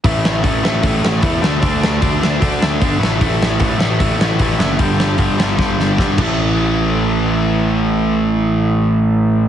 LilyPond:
<<
  \new Staff \with { instrumentName = "Overdriven electric guitar" } { \clef bass \time 4/4 \key d \dorian \tempo 4 = 152 <a, e a>4 <a, e a>8 <a, e a>8 <a, e a>4 <a, e a>8 <d a d'>8 | <d a d'>4 <d a d'>8 <d a d'>8 <d a d'>4 <d a d'>8 <a, e a>8 | <a, e a>4 <a, e a>8 <a, e a>8 <a, e a>4 <a, e a>8 <a, e a>8 | <g, d g>4 <g, d g>8 <g, d g>8 <g, d g>4 <g, d g>8 <a, e a>8~ |
<a, e a>1~ | <a, e a>1 | }
  \new Staff \with { instrumentName = "Picked electric bass" } { \clef bass \time 4/4 \key d \dorian a,,4 a,,8 a,,8 a,,8 a,,8 e,8 d,8 | d,4 d,8 d,8 d,8 d,8 g,,8 a,,8 | a,,4 a,,8 a,,8 a,,8 a,,8 a,,8 fis,,8 | g,,4 g,,8 g,,8 g,,8 g,,8 g,,8 a,,8~ |
a,,1~ | a,,1 | }
  \new DrumStaff \with { instrumentName = "Drums" } \drummode { \time 4/4 <hho bd>8 sn8 <hho bd>8 sn8 <hho bd>8 sn8 <hho bd>8 sn8 | <hho bd>8 sn8 <hho bd>8 sn8 <hho bd>8 sn8 <hho bd>8 sn8 | <hho bd>8 sn8 <hho bd>8 sn8 <hho bd>8 sn8 <hho bd>8 sn8 | <hho bd>8 sn8 <hho bd>8 sn8 <bd sn>8 sn8 <bd sn>8 <cymc bd>8 |
r4 r4 r4 r4 | r4 r4 r4 r4 | }
>>